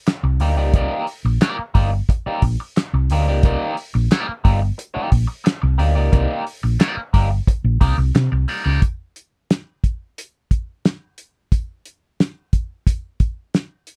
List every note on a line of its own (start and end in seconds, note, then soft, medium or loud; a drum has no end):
0.07 muted clean electric guitar stroke soft
0.07 snare medium
0.07 clap medium
0.07 closed hi-hat medium
0.23 0.40 C2 medium
0.23 muted clean electric guitar stroke medium
0.40 0.57 D2 medium
0.40 0.55 A#3 medium
0.40 0.56 D#4 medium
0.40 0.56 G4 medium
0.40 0.56 D5 medium
0.40 open hi-hat medium
0.57 0.74 C#2 loud
0.57 0.72 A#3 medium
0.57 0.72 D#4 medium
0.57 0.72 G4 medium
0.57 0.72 D5 medium
0.73 0.86 C2 loud
0.73 1.05 A#3 medium
0.73 1.05 D#4 medium
0.73 1.06 G4 medium
0.73 1.06 D5 medium
0.73 kick loud
0.73 closed hi-hat medium
1.07 open hi-hat medium
1.25 1.37 A#1 medium
1.25 muted clean electric guitar stroke soft
1.41 1.61 A#3 medium
1.41 1.58 D#4 medium
1.41 1.58 G4 medium
1.41 1.57 D5 loud
1.41 snare loud
1.41 clap medium
1.41 closed hi-hat medium
1.59 muted clean electric guitar stroke soft
1.59 muted fingered electric bass stroke soft
1.74 2.00 G1 medium
1.74 1.89 A#3 medium
1.74 1.90 D#4 medium
1.74 1.90 G4 medium
1.74 1.90 D5 medium
1.74 kick medium
1.74 open hi-hat medium
2.09 muted clean electric guitar stroke soft
2.09 kick medium
2.09 closed hi-hat loud
2.26 2.43 A#3 medium
2.26 2.43 D#4 medium
2.26 2.43 G4 medium
2.26 2.43 D5 medium
2.26 muted fingered electric bass stroke soft
2.42 2.55 A#1 medium
2.42 muted clean electric guitar stroke soft
2.42 kick medium
2.42 open hi-hat medium
2.60 muted clean electric guitar stroke soft
2.77 muted clean electric guitar stroke soft
2.77 snare loud
2.77 clap medium
2.77 closed hi-hat medium
2.93 3.10 C2 medium
2.93 muted clean electric guitar stroke soft
3.10 3.28 D2 medium
3.10 3.26 A#3 medium
3.10 3.26 D#4 medium
3.10 3.26 G4 medium
3.10 3.26 D5 medium
3.10 open hi-hat medium
3.28 3.44 C#2 medium
3.28 3.43 A#3 medium
3.28 3.43 D#4 medium
3.28 3.42 G4 medium
3.28 3.42 D5 medium
3.43 3.56 C2 loud
3.43 3.75 A#3 loud
3.43 3.75 D#4 medium
3.43 3.75 G4 loud
3.43 3.75 D5 medium
3.43 kick loud
3.43 closed hi-hat loud
3.77 open hi-hat medium
3.94 4.07 A#1 medium
3.94 muted clean electric guitar stroke soft
4.12 4.31 A#3 loud
4.12 4.27 D#4 loud
4.12 4.27 G4 loud
4.12 4.26 D5 loud
4.12 snare loud
4.12 clap loud
4.12 closed hi-hat medium
4.27 muted clean electric guitar stroke soft
4.27 muted fingered electric bass stroke soft
4.44 4.70 G1 medium
4.44 4.59 A#3 medium
4.44 4.59 D#4 medium
4.44 4.60 G4 medium
4.44 4.60 D5 medium
4.44 kick medium
4.44 open hi-hat soft
4.62 muted clean electric guitar stroke soft
4.78 muted clean electric guitar stroke soft
4.78 closed hi-hat loud
4.94 5.10 A#3 medium
4.94 5.10 D#4 medium
4.94 5.10 G4 medium
4.94 5.11 D5 medium
4.94 muted fingered electric bass stroke soft
5.11 5.25 A#1 medium
5.11 muted clean electric guitar stroke soft
5.11 kick medium
5.11 open hi-hat medium
5.27 muted clean electric guitar stroke soft
5.44 muted clean electric guitar stroke medium
5.44 snare loud
5.44 clap medium
5.44 closed hi-hat medium
5.62 5.79 C2 loud
5.62 muted clean electric guitar stroke soft
5.78 5.97 D2 medium
5.78 5.93 A#3 medium
5.78 5.94 D#4 medium
5.78 5.94 G4 medium
5.78 5.94 D5 medium
5.78 open hi-hat medium
5.95 6.09 C#2 medium
5.95 6.11 A#3 medium
5.95 6.11 D#4 medium
5.95 6.11 G4 medium
5.95 6.11 D5 medium
6.12 6.26 C2 loud
6.12 6.43 A#3 medium
6.12 6.44 D#4 medium
6.12 6.44 G4 medium
6.12 6.44 D5 medium
6.12 kick loud
6.12 closed hi-hat medium
6.47 open hi-hat medium
6.63 6.76 A#1 medium
6.63 muted clean electric guitar stroke medium
6.80 7.00 A#3 medium
6.80 6.96 D#4 loud
6.80 6.96 G4 medium
6.80 6.96 D5 loud
6.80 snare loud
6.80 clap loud
6.80 closed hi-hat medium
6.97 muted clean electric guitar stroke soft
6.97 muted fingered electric bass stroke soft
7.13 7.39 G1 medium
7.13 7.28 A#3 soft
7.13 7.29 D#4 medium
7.13 7.29 G4 medium
7.13 7.29 D5 medium
7.13 kick medium
7.13 open hi-hat medium
7.31 muted clean electric guitar stroke soft
7.47 muted clean electric guitar stroke soft
7.47 kick loud
7.47 closed hi-hat loud
7.64 7.77 A#1 medium
7.81 7.94 C2 medium
7.81 7.96 A#3 medium
7.81 7.96 D#4 medium
7.81 7.96 G4 medium
7.81 7.96 D5 medium
7.81 kick loud
7.81 open hi-hat medium
7.98 8.10 C2 medium
7.98 muted clean electric guitar stroke soft
8.15 8.27 C3 loud
8.15 muted clean electric guitar stroke soft
8.15 snare loud
8.15 clap medium
8.15 closed hi-hat medium
8.32 8.44 C2 medium
8.32 muted clean electric guitar stroke soft
8.48 8.63 A#3 medium
8.48 8.64 D#4 medium
8.48 8.64 G4 medium
8.48 8.63 D5 medium
8.48 open hi-hat medium
8.64 8.78 C#2 medium
8.64 8.80 A#3 medium
8.64 8.80 D#4 medium
8.64 8.80 G4 medium
8.64 8.80 D5 medium
8.82 kick loud
8.82 closed hi-hat medium
9.16 closed hi-hat medium
9.51 snare loud
9.51 closed hi-hat medium
9.84 kick medium
9.84 closed hi-hat medium
10.18 closed hi-hat loud
10.51 kick medium
10.51 closed hi-hat medium
10.85 snare loud
10.85 closed hi-hat medium
11.18 closed hi-hat medium
11.52 kick medium
11.52 closed hi-hat medium
11.85 closed hi-hat medium
12.20 snare loud
12.20 closed hi-hat medium
12.53 kick medium
12.53 closed hi-hat medium
12.87 kick medium
12.87 closed hi-hat medium
13.20 kick medium
13.20 closed hi-hat medium
13.54 snare medium
13.54 closed hi-hat medium
13.87 closed hi-hat medium